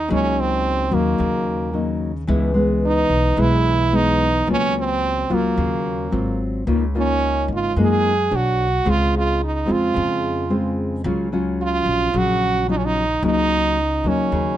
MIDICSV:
0, 0, Header, 1, 4, 480
1, 0, Start_track
1, 0, Tempo, 546946
1, 90, Time_signature, 4, 2, 24, 8
1, 12788, End_track
2, 0, Start_track
2, 0, Title_t, "French horn"
2, 0, Program_c, 0, 60
2, 0, Note_on_c, 0, 63, 90
2, 106, Note_off_c, 0, 63, 0
2, 111, Note_on_c, 0, 61, 97
2, 354, Note_on_c, 0, 60, 97
2, 368, Note_off_c, 0, 61, 0
2, 827, Note_on_c, 0, 58, 82
2, 840, Note_off_c, 0, 60, 0
2, 1778, Note_off_c, 0, 58, 0
2, 2511, Note_on_c, 0, 63, 100
2, 2990, Note_on_c, 0, 64, 102
2, 3003, Note_off_c, 0, 63, 0
2, 3472, Note_on_c, 0, 63, 102
2, 3485, Note_off_c, 0, 64, 0
2, 3941, Note_off_c, 0, 63, 0
2, 3958, Note_on_c, 0, 61, 99
2, 4168, Note_off_c, 0, 61, 0
2, 4209, Note_on_c, 0, 60, 97
2, 4695, Note_on_c, 0, 58, 79
2, 4709, Note_off_c, 0, 60, 0
2, 5633, Note_off_c, 0, 58, 0
2, 6127, Note_on_c, 0, 61, 98
2, 6556, Note_off_c, 0, 61, 0
2, 6611, Note_on_c, 0, 65, 90
2, 6815, Note_off_c, 0, 65, 0
2, 6862, Note_on_c, 0, 68, 103
2, 7336, Note_on_c, 0, 66, 93
2, 7349, Note_off_c, 0, 68, 0
2, 7811, Note_on_c, 0, 65, 106
2, 7825, Note_off_c, 0, 66, 0
2, 8030, Note_off_c, 0, 65, 0
2, 8054, Note_on_c, 0, 65, 95
2, 8256, Note_off_c, 0, 65, 0
2, 8286, Note_on_c, 0, 63, 81
2, 8531, Note_on_c, 0, 65, 91
2, 8544, Note_off_c, 0, 63, 0
2, 9469, Note_off_c, 0, 65, 0
2, 10197, Note_on_c, 0, 65, 100
2, 10684, Note_on_c, 0, 66, 103
2, 10697, Note_off_c, 0, 65, 0
2, 11146, Note_off_c, 0, 66, 0
2, 11150, Note_on_c, 0, 63, 93
2, 11212, Note_on_c, 0, 61, 79
2, 11225, Note_off_c, 0, 63, 0
2, 11282, Note_on_c, 0, 63, 93
2, 11296, Note_off_c, 0, 61, 0
2, 11623, Note_off_c, 0, 63, 0
2, 11630, Note_on_c, 0, 63, 105
2, 12358, Note_on_c, 0, 61, 83
2, 12371, Note_off_c, 0, 63, 0
2, 12788, Note_off_c, 0, 61, 0
2, 12788, End_track
3, 0, Start_track
3, 0, Title_t, "Nylon-string guitar"
3, 0, Program_c, 1, 24
3, 74, Note_on_c, 1, 49, 57
3, 78, Note_on_c, 1, 54, 58
3, 80, Note_on_c, 1, 58, 54
3, 86, Note_on_c, 1, 63, 69
3, 764, Note_off_c, 1, 54, 0
3, 767, Note_off_c, 1, 58, 0
3, 769, Note_off_c, 1, 63, 0
3, 797, Note_on_c, 1, 54, 70
3, 807, Note_on_c, 1, 58, 58
3, 807, Note_on_c, 1, 63, 62
3, 1018, Note_off_c, 1, 49, 0
3, 1038, Note_on_c, 1, 49, 61
3, 1485, Note_off_c, 1, 54, 0
3, 1489, Note_off_c, 1, 63, 0
3, 1490, Note_off_c, 1, 58, 0
3, 1518, Note_on_c, 1, 54, 58
3, 1524, Note_on_c, 1, 58, 57
3, 1527, Note_on_c, 1, 63, 62
3, 1847, Note_off_c, 1, 54, 0
3, 1848, Note_off_c, 1, 58, 0
3, 1851, Note_off_c, 1, 63, 0
3, 1980, Note_off_c, 1, 49, 0
3, 1996, Note_on_c, 1, 52, 57
3, 1998, Note_on_c, 1, 56, 54
3, 2002, Note_on_c, 1, 59, 56
3, 2007, Note_on_c, 1, 64, 67
3, 2205, Note_off_c, 1, 56, 0
3, 2205, Note_off_c, 1, 59, 0
3, 2210, Note_off_c, 1, 64, 0
3, 2230, Note_on_c, 1, 56, 66
3, 2238, Note_on_c, 1, 59, 60
3, 2921, Note_off_c, 1, 56, 0
3, 2925, Note_off_c, 1, 59, 0
3, 2940, Note_off_c, 1, 52, 0
3, 2953, Note_on_c, 1, 52, 59
3, 2958, Note_on_c, 1, 56, 58
3, 2961, Note_on_c, 1, 59, 57
3, 2966, Note_on_c, 1, 64, 68
3, 3404, Note_off_c, 1, 56, 0
3, 3407, Note_off_c, 1, 59, 0
3, 3408, Note_off_c, 1, 64, 0
3, 3444, Note_on_c, 1, 56, 57
3, 3449, Note_on_c, 1, 59, 62
3, 3756, Note_off_c, 1, 56, 0
3, 3758, Note_off_c, 1, 59, 0
3, 3898, Note_off_c, 1, 52, 0
3, 3920, Note_on_c, 1, 49, 56
3, 3926, Note_on_c, 1, 54, 55
3, 3928, Note_on_c, 1, 58, 61
3, 3929, Note_on_c, 1, 65, 64
3, 4608, Note_off_c, 1, 54, 0
3, 4611, Note_off_c, 1, 58, 0
3, 4611, Note_off_c, 1, 65, 0
3, 4648, Note_on_c, 1, 54, 67
3, 4652, Note_on_c, 1, 58, 60
3, 4653, Note_on_c, 1, 65, 74
3, 4862, Note_off_c, 1, 49, 0
3, 4895, Note_on_c, 1, 49, 57
3, 5331, Note_off_c, 1, 54, 0
3, 5332, Note_off_c, 1, 58, 0
3, 5333, Note_off_c, 1, 65, 0
3, 5348, Note_off_c, 1, 49, 0
3, 5364, Note_on_c, 1, 54, 57
3, 5370, Note_on_c, 1, 65, 63
3, 5374, Note_on_c, 1, 60, 56
3, 5828, Note_off_c, 1, 54, 0
3, 5831, Note_off_c, 1, 65, 0
3, 5832, Note_off_c, 1, 60, 0
3, 5852, Note_on_c, 1, 58, 57
3, 5859, Note_on_c, 1, 49, 54
3, 5861, Note_on_c, 1, 63, 60
3, 5863, Note_on_c, 1, 65, 65
3, 5992, Note_off_c, 1, 58, 0
3, 5996, Note_off_c, 1, 63, 0
3, 5997, Note_off_c, 1, 65, 0
3, 6097, Note_on_c, 1, 58, 60
3, 6099, Note_on_c, 1, 63, 70
3, 6104, Note_on_c, 1, 65, 65
3, 6775, Note_off_c, 1, 58, 0
3, 6775, Note_off_c, 1, 63, 0
3, 6778, Note_off_c, 1, 65, 0
3, 6790, Note_off_c, 1, 49, 0
3, 6818, Note_on_c, 1, 56, 57
3, 6825, Note_on_c, 1, 58, 62
3, 6828, Note_on_c, 1, 63, 55
3, 6829, Note_on_c, 1, 65, 61
3, 7126, Note_off_c, 1, 58, 0
3, 7126, Note_off_c, 1, 63, 0
3, 7128, Note_off_c, 1, 65, 0
3, 7271, Note_off_c, 1, 56, 0
3, 7293, Note_on_c, 1, 62, 64
3, 7297, Note_on_c, 1, 69, 59
3, 7302, Note_on_c, 1, 73, 63
3, 7600, Note_off_c, 1, 62, 0
3, 7601, Note_off_c, 1, 69, 0
3, 7604, Note_off_c, 1, 73, 0
3, 7767, Note_on_c, 1, 49, 57
3, 7772, Note_on_c, 1, 65, 66
3, 7774, Note_on_c, 1, 56, 58
3, 7776, Note_on_c, 1, 60, 57
3, 8247, Note_off_c, 1, 56, 0
3, 8248, Note_off_c, 1, 65, 0
3, 8249, Note_off_c, 1, 60, 0
3, 8476, Note_on_c, 1, 56, 61
3, 8484, Note_on_c, 1, 60, 65
3, 8490, Note_on_c, 1, 65, 74
3, 8704, Note_off_c, 1, 49, 0
3, 8721, Note_on_c, 1, 49, 57
3, 9164, Note_off_c, 1, 56, 0
3, 9168, Note_off_c, 1, 60, 0
3, 9170, Note_off_c, 1, 65, 0
3, 9213, Note_on_c, 1, 56, 61
3, 9218, Note_on_c, 1, 60, 61
3, 9221, Note_on_c, 1, 65, 65
3, 9661, Note_off_c, 1, 49, 0
3, 9672, Note_off_c, 1, 56, 0
3, 9672, Note_off_c, 1, 60, 0
3, 9676, Note_off_c, 1, 65, 0
3, 9698, Note_on_c, 1, 49, 57
3, 9702, Note_on_c, 1, 54, 56
3, 9705, Note_on_c, 1, 61, 62
3, 9705, Note_on_c, 1, 65, 69
3, 9896, Note_off_c, 1, 54, 0
3, 9896, Note_off_c, 1, 61, 0
3, 9898, Note_off_c, 1, 65, 0
3, 9936, Note_on_c, 1, 54, 58
3, 9940, Note_on_c, 1, 61, 64
3, 9946, Note_on_c, 1, 65, 72
3, 10613, Note_off_c, 1, 54, 0
3, 10616, Note_off_c, 1, 61, 0
3, 10617, Note_off_c, 1, 65, 0
3, 10630, Note_off_c, 1, 49, 0
3, 10648, Note_on_c, 1, 49, 59
3, 10653, Note_on_c, 1, 54, 60
3, 10654, Note_on_c, 1, 61, 59
3, 11092, Note_off_c, 1, 54, 0
3, 11092, Note_off_c, 1, 61, 0
3, 11131, Note_on_c, 1, 54, 55
3, 11134, Note_on_c, 1, 61, 61
3, 11142, Note_on_c, 1, 65, 65
3, 11439, Note_off_c, 1, 54, 0
3, 11439, Note_off_c, 1, 61, 0
3, 11441, Note_off_c, 1, 65, 0
3, 11584, Note_off_c, 1, 49, 0
3, 11607, Note_on_c, 1, 49, 63
3, 11609, Note_on_c, 1, 54, 59
3, 11614, Note_on_c, 1, 58, 57
3, 11619, Note_on_c, 1, 63, 57
3, 12084, Note_off_c, 1, 54, 0
3, 12088, Note_off_c, 1, 58, 0
3, 12090, Note_off_c, 1, 63, 0
3, 12331, Note_on_c, 1, 54, 68
3, 12338, Note_on_c, 1, 58, 69
3, 12343, Note_on_c, 1, 63, 72
3, 12544, Note_off_c, 1, 49, 0
3, 12568, Note_on_c, 1, 49, 57
3, 12788, Note_off_c, 1, 49, 0
3, 12788, Note_off_c, 1, 54, 0
3, 12788, Note_off_c, 1, 58, 0
3, 12788, Note_off_c, 1, 63, 0
3, 12788, End_track
4, 0, Start_track
4, 0, Title_t, "Upright bass"
4, 0, Program_c, 2, 32
4, 92, Note_on_c, 2, 37, 104
4, 775, Note_off_c, 2, 37, 0
4, 803, Note_on_c, 2, 39, 82
4, 1029, Note_off_c, 2, 39, 0
4, 1050, Note_on_c, 2, 39, 90
4, 1975, Note_off_c, 2, 39, 0
4, 2004, Note_on_c, 2, 37, 103
4, 2692, Note_off_c, 2, 37, 0
4, 2717, Note_on_c, 2, 35, 84
4, 2946, Note_off_c, 2, 35, 0
4, 2959, Note_on_c, 2, 35, 100
4, 3889, Note_off_c, 2, 35, 0
4, 3926, Note_on_c, 2, 37, 93
4, 4613, Note_off_c, 2, 37, 0
4, 4654, Note_on_c, 2, 37, 74
4, 4875, Note_off_c, 2, 37, 0
4, 4891, Note_on_c, 2, 39, 92
4, 5337, Note_off_c, 2, 39, 0
4, 5374, Note_on_c, 2, 32, 91
4, 5818, Note_off_c, 2, 32, 0
4, 5853, Note_on_c, 2, 37, 97
4, 6536, Note_off_c, 2, 37, 0
4, 6566, Note_on_c, 2, 32, 82
4, 6791, Note_off_c, 2, 32, 0
4, 6813, Note_on_c, 2, 42, 95
4, 7257, Note_off_c, 2, 42, 0
4, 7297, Note_on_c, 2, 35, 92
4, 7740, Note_off_c, 2, 35, 0
4, 7776, Note_on_c, 2, 37, 97
4, 8457, Note_off_c, 2, 37, 0
4, 8503, Note_on_c, 2, 41, 81
4, 8720, Note_off_c, 2, 41, 0
4, 8744, Note_on_c, 2, 41, 92
4, 9661, Note_off_c, 2, 41, 0
4, 9691, Note_on_c, 2, 37, 102
4, 10374, Note_off_c, 2, 37, 0
4, 10407, Note_on_c, 2, 34, 81
4, 10631, Note_off_c, 2, 34, 0
4, 10652, Note_on_c, 2, 34, 91
4, 11575, Note_off_c, 2, 34, 0
4, 11607, Note_on_c, 2, 37, 97
4, 12292, Note_off_c, 2, 37, 0
4, 12320, Note_on_c, 2, 39, 81
4, 12546, Note_off_c, 2, 39, 0
4, 12567, Note_on_c, 2, 39, 86
4, 12788, Note_off_c, 2, 39, 0
4, 12788, End_track
0, 0, End_of_file